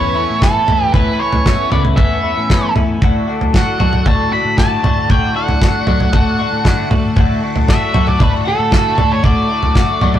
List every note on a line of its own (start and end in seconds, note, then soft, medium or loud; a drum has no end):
0.00 0.23 E2 medium
0.00 0.21 A2 medium
0.00 0.41 E3 medium
0.00 0.17 B3 medium
0.00 0.15 C#4 medium
0.00 0.14 E4 medium
0.00 2.98 E4 medium
0.00 10.19 A4 medium
0.00 2.98 B4 medium
0.00 0.44 C#5 medium
0.00 2.98 E5 medium
0.15 0.41 B3 medium
0.15 0.42 C#4 medium
0.15 0.42 E4 medium
0.30 0.63 A2 medium
0.41 0.93 A2 medium
0.41 0.93 E3 medium
0.41 0.69 B3 medium
0.41 0.67 C#4 medium
0.41 0.66 E4 medium
0.41 0.93 A4 medium
0.41 kick loud
0.41 snare medium
0.67 0.91 A2 medium
0.67 0.93 B3 medium
0.67 0.94 C#4 medium
0.67 0.95 E4 medium
0.67 floor tom medium
0.67 mid tom medium
0.93 1.49 A2 medium
0.93 1.16 A2 medium
0.93 1.44 E3 medium
0.93 1.21 B3 medium
0.93 1.20 C#4 medium
0.93 1.18 E4 medium
0.93 1.21 B4 medium
0.93 kick loud
0.93 floor tom medium
1.19 1.45 B3 medium
1.19 1.46 C#4 medium
1.19 1.47 E4 medium
1.19 1.72 C#5 medium
1.33 1.55 A2 medium
1.33 floor tom medium
1.45 1.71 E3 medium
1.45 1.71 B3 medium
1.45 1.70 C#4 medium
1.45 1.69 E4 medium
1.45 kick medium
1.45 snare medium
1.71 2.29 A2 medium
1.71 1.94 C#3 medium
1.71 1.96 E3 medium
1.71 1.97 B3 medium
1.71 1.98 C#4 medium
1.71 1.99 E4 medium
1.71 1.79 D5 medium
1.71 floor tom medium
1.71 mid tom medium
1.85 floor tom medium
1.96 2.31 E2 medium
1.96 2.50 E3 medium
1.96 2.25 B3 medium
1.96 2.24 C#4 medium
1.96 2.22 E4 medium
1.96 2.71 E5 medium
1.96 kick loud
1.96 floor tom medium
1.96 mid tom medium
2.23 2.50 B3 medium
2.23 2.51 C#4 medium
2.23 2.51 E4 medium
2.37 2.71 A2 medium
2.49 3.01 A2 medium
2.49 3.01 E3 medium
2.49 2.77 B3 medium
2.49 2.76 C#4 medium
2.49 2.74 E4 medium
2.49 kick medium
2.49 snare medium
2.75 2.99 A2 medium
2.75 3.02 B3 medium
2.75 3.01 C#4 medium
2.75 3.00 E4 medium
2.75 floor tom medium
2.75 mid tom medium
3.01 3.82 A2 medium
3.01 3.24 A2 medium
3.01 3.52 D3 medium
3.01 3.30 A3 medium
3.01 3.29 D4 medium
3.01 10.19 F#4 medium
3.01 3.27 F#4 medium
3.01 7.13 D5 medium
3.01 10.19 F#5 medium
3.01 kick loud
3.01 floor tom medium
3.28 3.54 A3 medium
3.28 3.55 D4 medium
3.28 3.56 F#4 medium
3.41 3.63 A2 medium
3.41 floor tom medium
3.53 3.80 D3 medium
3.53 3.81 A3 medium
3.53 3.80 D4 medium
3.53 3.79 F#4 medium
3.53 4.04 F#5 medium
3.53 kick medium
3.53 snare medium
3.80 4.57 A2 medium
3.80 4.04 D3 medium
3.80 4.03 F#3 medium
3.80 4.06 A3 medium
3.80 4.07 D4 medium
3.80 4.08 F#4 medium
3.80 floor tom medium
3.80 mid tom medium
3.93 floor tom medium
4.06 4.39 A2 medium
4.06 4.57 D3 medium
4.06 4.35 A3 medium
4.06 4.33 D4 medium
4.06 4.32 F#4 medium
4.06 4.33 A5 medium
4.06 kick loud
4.06 floor tom medium
4.06 mid tom medium
4.32 4.58 A3 medium
4.32 4.59 D4 medium
4.32 4.59 F#4 medium
4.32 4.58 B5 medium
4.44 4.78 A2 medium
4.57 5.08 A2 medium
4.57 5.09 D3 medium
4.57 4.86 A3 medium
4.57 4.85 D4 medium
4.57 4.83 F#4 medium
4.57 5.12 A5 medium
4.57 kick loud
4.57 snare medium
4.83 5.06 A2 medium
4.83 5.10 A3 medium
4.83 5.11 D4 medium
4.83 5.12 F#4 medium
4.83 floor tom medium
4.83 mid tom medium
5.09 5.89 A2 medium
5.09 5.32 A2 medium
5.09 5.60 D3 medium
5.09 5.38 A3 medium
5.09 5.36 D4 medium
5.09 5.35 F#4 medium
5.09 5.36 G5 medium
5.09 kick loud
5.09 floor tom medium
5.36 5.62 A3 medium
5.36 5.63 D4 medium
5.36 5.64 F#4 medium
5.36 6.88 F#5 medium
5.48 5.71 A2 medium
5.48 floor tom medium
5.61 5.88 D3 medium
5.61 5.88 A3 medium
5.61 5.87 D4 medium
5.61 5.87 F#4 medium
5.61 kick loud
5.61 snare medium
5.87 6.64 A2 medium
5.87 6.11 D3 medium
5.87 6.10 F#3 medium
5.87 6.13 A3 medium
5.87 6.14 D4 medium
5.87 6.15 F#4 medium
5.87 floor tom medium
5.87 mid tom medium
6.00 floor tom medium
6.13 6.47 A2 medium
6.13 6.64 D3 medium
6.13 6.41 A3 medium
6.13 6.40 D4 medium
6.13 6.38 F#4 medium
6.13 kick loud
6.13 floor tom medium
6.13 mid tom medium
6.38 6.65 A3 medium
6.38 6.66 D4 medium
6.38 6.67 F#4 medium
6.52 6.86 A2 medium
6.64 7.16 A2 medium
6.64 7.16 D3 medium
6.64 6.93 A3 medium
6.64 6.91 D4 loud
6.64 6.90 F#4 medium
6.64 kick medium
6.64 snare medium
6.90 7.13 A2 medium
6.90 7.18 A3 medium
6.90 7.18 D4 medium
6.90 7.19 F#4 medium
6.90 floor tom medium
6.90 mid tom medium
7.16 7.95 A2 medium
7.16 7.39 A2 medium
7.16 7.66 D3 medium
7.16 7.44 A3 medium
7.16 7.43 D4 medium
7.16 7.41 F#4 medium
7.16 10.19 E5 medium
7.16 kick loud
7.16 floor tom medium
7.42 7.68 A3 medium
7.42 7.69 D4 medium
7.42 7.70 F#4 medium
7.56 7.78 A2 medium
7.56 floor tom medium
7.67 7.94 D3 medium
7.67 7.94 A3 medium
7.67 7.94 D4 medium
7.67 7.92 F#4 medium
7.67 8.08 E5 medium
7.67 kick loud
7.67 snare medium
7.93 8.71 A2 medium
7.93 8.17 D3 medium
7.93 8.17 F#3 medium
7.93 8.19 A3 medium
7.93 8.19 D4 medium
7.93 8.21 F#4 medium
7.93 floor tom medium
7.93 mid tom medium
8.07 8.21 D5 medium
8.07 floor tom medium
8.19 8.54 A2 medium
8.19 8.70 D3 medium
8.19 8.47 A3 medium
8.19 8.46 D4 medium
8.19 8.44 F#4 medium
8.19 kick loud
8.19 floor tom medium
8.19 mid tom medium
8.23 8.30 B4 medium
8.45 8.72 A3 medium
8.45 8.72 D4 medium
8.45 8.72 F#4 medium
8.45 9.14 A4 medium
8.59 8.92 A2 medium
8.71 9.23 A2 medium
8.71 9.22 D3 medium
8.71 8.99 A3 medium
8.71 8.97 D4 loud
8.71 8.95 F#4 loud
8.71 kick loud
8.71 snare medium
8.96 9.20 A2 medium
8.96 9.23 A3 medium
8.96 9.24 D4 medium
8.96 9.24 F#4 medium
8.96 floor tom medium
8.96 mid tom medium
9.12 9.24 C#5 medium
9.23 9.75 A2 medium
9.23 9.46 A2 medium
9.23 9.74 D3 medium
9.23 9.51 A3 medium
9.23 9.50 D4 medium
9.23 9.48 F#4 medium
9.23 10.19 D5 medium
9.23 kick loud
9.23 floor tom medium
9.50 9.75 A3 medium
9.50 9.76 D4 medium
9.50 9.77 F#4 medium
9.63 9.85 A2 medium
9.63 floor tom medium
9.75 10.03 D3 medium
9.75 10.02 A3 medium
9.75 10.02 D4 medium
9.75 10.01 F#4 medium
9.75 kick loud
9.75 snare medium
10.01 10.19 A2 medium
10.01 10.19 D3 medium
10.01 10.19 F#3 medium
10.01 10.19 A3 medium
10.01 10.19 D4 medium
10.01 10.19 F#4 medium
10.01 floor tom medium
10.01 mid tom medium
10.14 floor tom medium